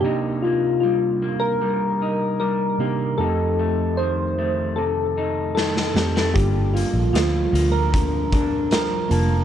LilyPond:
<<
  \new Staff \with { instrumentName = "Synth keys" } { \time 4/4 \key g \minor \tempo 4 = 76 g'8 f'8 f'8. bes'4~ bes'16 bes'4 | a'4 c''4 a'4 a'4 | g'8 f'8 f'8. bes'4~ bes'16 bes'4 | }
  \new Staff \with { instrumentName = "Tine electric piano" } { \time 4/4 \key g \minor <c bes d' ees' g'>4. r2 <c bes d' ees' g'>8 | <f, a c' ees' g'>4. r2 <f, a c' ees' g'>8 | <bes d' f' a'>4. r2 <bes d' f' a''>8 | }
  \new Staff \with { instrumentName = "Clean electric guitar" } { \time 4/4 \key g \minor <c ees'>8 bes8 g8 bes8 g8 ees'8 g8 bes8 | <f, ees'>8 a8 ees8 a8 c8 ees'8 ees8 g16 a16 | <g, d'>8 bes8 f8 bes8 d8 d'8 f8 bes8 | }
  \new Staff \with { instrumentName = "Picked electric bass" } { \clef bass \time 4/4 \key g \minor r1 | r1 | g,,8. bes,,16 d,8 d,2 f,,8 | }
  \new DrumStaff \with { instrumentName = "Drums" } \drummode { \time 4/4 r4 r4 r4 r4 | r4 r4 r4 sn16 sn16 sn16 sn16 | <hh bd>8 hh8 <hh sn>8 hh8 <hh bd>8 <hh bd>8 <hh sn>8 hh8 | }
>>